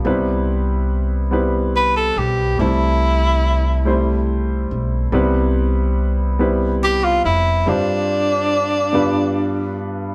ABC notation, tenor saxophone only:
X:1
M:6/8
L:1/16
Q:3/8=47
K:C
V:1 name="Tenor saxophone"
z8 B A G2 | E8 z4 | z8 G F E2 | D8- D2 z2 |]